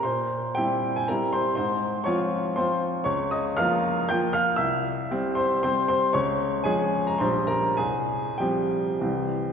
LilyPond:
<<
  \new Staff \with { instrumentName = "Grand piano" } { \time 3/4 \key c \phrygian \tempo 4 = 115 <c'' c'''>4 <g' g''>8. aes''16 <bes' bes''>8 <c'' c'''>8 | <c'' c'''>4 <des'' des'''>4 <c'' c'''>8 r8 | <des'' des'''>8 <ees'' ees'''>8 <f'' f'''>4 <g'' g'''>8 <f'' f'''>8 | <e'' e'''>4. <c'' c'''>8 <c'' c'''>8 <c'' c'''>8 |
<des'' des'''>4 <aes' aes''>8. bes''16 <c'' c'''>8 <bes' bes''>8 | <aes' aes''>4 <g' g''>4. r8 | }
  \new Staff \with { instrumentName = "Grand piano" } { \clef bass \time 3/4 \key c \phrygian bes,4 <g c' e'>4 <g c' e'>4 | aes,4 <f c' f'>4 <f c' f'>4 | des,4 <f bes f'>4 <f bes f'>4 | c,4 <g c'>4 <g c'>4 |
des,4 <f aes des'>4 <bes,, f g des'>4 | c,4 <f g c'>4 <c, e g c'>4 | }
>>